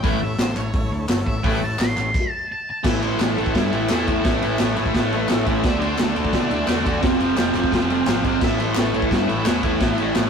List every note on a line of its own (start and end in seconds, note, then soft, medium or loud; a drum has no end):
0.00 0.17 A1 medium
0.00 0.18 A2 medium
0.00 0.18 E3 loud
0.00 0.22 G5 loud
0.00 kick loud
0.00 open hi-hat medium
0.05 0.19 A3 loud
0.05 0.36 E4 medium
0.05 0.37 A4 medium
0.05 0.36 C#5 medium
0.22 0.36 A1 medium
0.22 0.40 E5 medium
0.38 0.52 A1 medium
0.38 0.71 E4 medium
0.38 0.71 A4 medium
0.38 0.57 C5 loud
0.38 0.71 C#5 medium
0.38 snare loud
0.38 clap loud
0.38 open hi-hat medium
0.56 0.70 A1 medium
0.56 0.91 C#5 medium
0.56 clap medium
0.73 0.88 A1 medium
0.73 1.06 E4 medium
0.73 1.06 A4 medium
0.73 1.06 C#5 medium
0.73 kick loud
0.73 open hi-hat medium
0.90 1.04 D2 loud
1.08 1.22 G1 loud
1.08 1.41 E4 medium
1.08 1.41 A4 medium
1.08 1.42 C#5 loud
1.08 snare loud
1.08 clap loud
1.08 open hi-hat medium
1.26 1.40 A1 medium
1.26 1.43 E5 loud
1.26 kick medium
1.43 1.58 A1 loud
1.43 1.58 A2 loud
1.43 1.59 E3 loud
1.43 1.59 A3 loud
1.43 1.77 E4 medium
1.43 1.76 A4 medium
1.43 1.77 C#5 medium
1.43 1.64 G5 loud
1.43 kick loud
1.43 open hi-hat medium
1.63 1.76 A1 medium
1.63 1.80 A5 loud
1.79 1.93 A1 loud
1.79 2.11 E4 medium
1.79 2.12 A4 medium
1.79 2.11 C#5 medium
1.79 2.31 C6 loud
1.79 snare loud
1.79 clap loud
1.79 open hi-hat medium
1.97 2.10 A1 loud
1.97 clap medium
2.14 kick loud
2.14 crash medium
2.31 2.48 A5 loud
2.52 2.68 A5 medium
2.70 2.86 A5 loud
2.84 3.14 A1 medium
2.84 3.01 A2 loud
2.84 3.01 E3 loud
2.84 3.02 A3 loud
2.84 3.17 E4 medium
2.84 3.17 A4 medium
2.84 3.17 C#5 medium
2.84 3.03 E5 medium
2.84 kick loud
2.84 snare loud
2.84 crash loud
3.02 3.19 A2 medium
3.02 3.19 E3 medium
3.02 3.20 A3 medium
3.02 3.20 C5 medium
3.02 ride medium
3.20 3.35 A1 medium
3.20 3.36 A2 medium
3.20 3.37 E3 medium
3.20 3.37 A3 loud
3.20 3.52 E4 medium
3.20 3.52 A4 medium
3.20 3.55 A4 loud
3.20 3.52 C#5 medium
3.20 snare loud
3.20 clap loud
3.20 ride loud
3.37 3.53 A1 loud
3.37 3.53 A2 medium
3.37 3.54 E3 medium
3.37 3.55 A3 loud
3.37 ride medium
3.46 kick medium
3.54 3.70 G2 medium
3.54 3.71 A2 medium
3.54 3.72 E3 medium
3.54 3.73 A3 loud
3.54 3.87 E4 medium
3.54 3.90 E4 medium
3.54 3.88 A4 medium
3.54 3.87 E5 medium
3.54 kick medium
3.54 snare loud
3.54 ride medium
3.72 3.88 A1 medium
3.72 3.89 A2 medium
3.72 3.89 E3 medium
3.72 3.90 A3 medium
3.72 ride medium
3.89 4.20 E2 medium
3.89 4.06 A2 medium
3.89 4.06 E3 medium
3.89 4.08 A3 medium
3.89 4.22 E4 medium
3.89 4.22 A4 medium
3.89 4.22 C#5 medium
3.89 snare loud
3.89 clap loud
3.89 ride loud
3.94 4.60 E4 medium
4.07 4.22 A2 medium
4.07 4.23 E3 medium
4.07 4.25 A3 loud
4.07 kick medium
4.07 ride medium
4.23 4.40 A1 loud
4.23 4.40 A2 medium
4.23 4.41 E3 loud
4.23 4.42 A3 loud
4.23 kick loud
4.23 snare loud
4.23 ride loud
4.28 4.57 E4 medium
4.28 4.58 A4 medium
4.28 4.58 C#5 medium
4.42 4.58 A1 medium
4.42 4.58 A2 medium
4.42 4.59 E3 medium
4.42 4.60 A3 medium
4.42 ride medium
4.59 4.75 A1 loud
4.59 4.75 A2 loud
4.59 4.76 E3 medium
4.59 4.77 A3 loud
4.59 4.92 E4 medium
4.59 4.93 C#5 loud
4.59 snare loud
4.59 clap medium
4.59 ride loud
4.63 4.93 A4 medium
4.76 4.93 A1 medium
4.76 4.93 A2 medium
4.76 4.94 E3 medium
4.76 4.95 A3 loud
4.76 ride medium
4.86 kick medium
4.94 5.24 A1 medium
4.94 5.11 A2 medium
4.94 5.12 E3 loud
4.94 5.14 A3 loud
4.94 5.27 E4 medium
4.94 5.27 A4 medium
4.94 5.27 C#5 loud
4.94 kick medium
4.94 snare loud
4.94 ride medium
5.12 5.27 A2 medium
5.12 5.27 E3 medium
5.12 5.29 A3 medium
5.12 ride medium
5.28 5.60 A1 medium
5.28 5.45 A2 medium
5.28 5.46 E3 medium
5.28 5.47 A3 medium
5.28 5.62 E4 medium
5.28 5.62 A4 medium
5.28 5.61 C#5 loud
5.28 5.63 E5 medium
5.28 snare loud
5.28 clap loud
5.28 ride medium
5.46 5.63 A2 medium
5.46 5.63 E3 loud
5.46 5.64 A3 medium
5.46 kick medium
5.46 ride medium
5.63 5.94 D2 loud
5.63 5.78 D3 medium
5.63 5.80 A3 loud
5.63 5.80 D4 loud
5.63 5.97 F#4 medium
5.63 5.97 A4 medium
5.63 5.96 D5 medium
5.63 kick loud
5.63 snare loud
5.63 ride loud
5.68 5.83 E5 medium
5.80 5.96 D3 medium
5.80 5.98 A3 medium
5.80 5.98 D4 medium
5.80 5.99 C5 medium
5.80 ride medium
5.97 6.14 D2 loud
5.97 6.13 D3 medium
5.97 6.14 A3 medium
5.97 6.15 D4 loud
5.97 snare loud
5.97 clap medium
5.97 ride medium
6.02 6.32 F#4 medium
6.02 6.34 A4 loud
6.02 6.33 A4 medium
6.02 6.33 D5 medium
6.14 6.32 D2 loud
6.14 6.32 D3 medium
6.14 6.34 A3 loud
6.14 6.34 D4 medium
6.14 ride medium
6.25 kick medium
6.33 6.48 B2 medium
6.33 6.48 D3 loud
6.33 6.50 A3 loud
6.33 6.50 D4 loud
6.33 6.68 E4 loud
6.33 6.66 F#4 medium
6.33 6.66 A4 medium
6.33 6.67 D5 medium
6.33 kick medium
6.33 snare loud
6.33 ride loud
6.49 6.66 D2 loud
6.49 6.66 D3 medium
6.49 6.67 A3 medium
6.49 6.67 D4 medium
6.49 ride medium
6.67 6.98 E2 medium
6.67 6.83 D3 medium
6.67 6.84 A3 medium
6.67 6.84 D4 medium
6.67 7.00 F#4 medium
6.67 7.03 F#4 loud
6.67 7.01 A4 medium
6.67 snare loud
6.67 clap medium
6.67 ride loud
6.71 7.01 D5 medium
6.84 7.01 D3 medium
6.84 7.02 A3 medium
6.84 7.02 D4 loud
6.84 kick medium
6.84 ride medium
7.01 7.18 F1 loud
7.01 7.18 F2 loud
7.01 7.19 C3 loud
7.01 7.19 F3 loud
7.01 7.35 C5 medium
7.01 kick loud
7.01 snare loud
7.01 ride loud
7.05 7.36 F4 medium
7.05 7.36 A4 medium
7.19 7.35 F1 loud
7.19 7.34 F2 medium
7.19 7.36 C3 loud
7.19 7.36 F3 medium
7.19 ride medium
7.35 7.52 F1 medium
7.35 7.53 F2 medium
7.35 7.54 C3 medium
7.35 7.55 F3 loud
7.35 snare loud
7.35 clap loud
7.35 ride loud
7.41 7.71 F4 medium
7.41 7.71 A4 medium
7.41 7.71 C5 medium
7.54 7.70 F1 loud
7.54 7.70 F2 medium
7.54 7.71 C3 loud
7.54 7.71 F3 loud
7.54 clap medium
7.54 ride medium
7.64 kick medium
7.71 8.02 F1 medium
7.71 7.88 F2 loud
7.71 7.89 C3 loud
7.71 7.89 F3 loud
7.71 8.05 F4 medium
7.71 8.05 A4 medium
7.71 8.05 C5 loud
7.71 kick medium
7.71 snare loud
7.71 ride medium
7.89 8.06 F2 medium
7.89 8.07 C3 medium
7.89 8.07 F3 loud
7.89 ride medium
8.07 8.37 G#1 medium
8.07 8.23 F2 medium
8.07 8.25 C3 medium
8.07 8.25 F3 medium
8.07 8.39 C4 medium
8.07 8.40 A4 medium
8.07 8.39 C5 medium
8.07 8.42 F#5 loud
8.07 snare loud
8.07 clap loud
8.07 ride loud
8.24 8.41 F2 medium
8.24 8.42 C3 medium
8.24 8.42 F3 medium
8.24 kick medium
8.24 ride medium
8.41 8.72 A1 medium
8.41 8.59 A2 medium
8.41 8.60 E3 loud
8.41 8.60 A3 loud
8.41 8.74 E4 medium
8.41 8.74 A4 medium
8.41 8.74 C#5 medium
8.41 8.59 E5 medium
8.41 kick loud
8.41 snare loud
8.41 crash loud
8.59 8.75 A2 medium
8.59 8.76 E3 medium
8.59 8.77 A3 medium
8.59 8.76 C5 medium
8.59 ride medium
8.75 8.92 A1 loud
8.75 8.93 A2 medium
8.75 8.93 E3 medium
8.75 8.94 A3 loud
8.75 9.09 E4 medium
8.75 9.08 A4 medium
8.75 9.11 A4 medium
8.75 9.09 C#5 medium
8.75 snare loud
8.75 clap loud
8.75 ride medium
8.93 9.09 A1 medium
8.93 9.10 A2 medium
8.93 9.11 E3 medium
8.93 9.12 A3 loud
8.93 ride medium
9.02 kick medium
9.11 9.26 G2 medium
9.11 9.26 A2 medium
9.11 9.27 E3 loud
9.11 9.28 A3 loud
9.11 9.44 E4 medium
9.11 9.44 A4 medium
9.11 9.44 C#5 medium
9.11 kick medium
9.11 snare loud
9.11 ride medium
9.15 9.46 E4 medium
9.27 9.44 A1 loud
9.27 9.44 A2 medium
9.27 9.44 E3 medium
9.27 9.45 A3 loud
9.27 ride medium
9.45 9.76 E2 medium
9.45 9.63 A2 medium
9.45 9.63 E3 medium
9.45 9.65 A3 medium
9.45 10.14 E4 medium
9.45 9.79 E4 medium
9.45 snare loud
9.45 clap loud
9.45 ride loud
9.49 9.79 A4 medium
9.49 9.79 C#5 medium
9.63 9.80 A2 medium
9.63 9.81 E3 medium
9.63 9.83 A3 medium
9.63 kick medium
9.63 ride medium
9.80 9.96 A1 medium
9.80 9.97 A2 loud
9.80 9.98 E3 loud
9.80 10.00 A3 loud
9.80 kick loud
9.80 snare loud
9.80 ride loud
9.84 10.15 E4 medium
9.84 10.14 A4 medium
9.84 10.15 C#5 medium
9.98 10.13 A1 loud
9.98 10.15 A2 medium
9.98 10.15 E3 medium
9.98 10.17 A3 medium
9.98 ride medium
10.15 10.30 A1 loud
10.15 10.30 A2 medium
10.15 10.30 E3 loud
10.15 10.30 A3 loud
10.15 10.30 E4 medium
10.15 10.30 A4 medium
10.15 10.30 C#5 medium
10.15 snare loud
10.15 clap medium
10.15 ride loud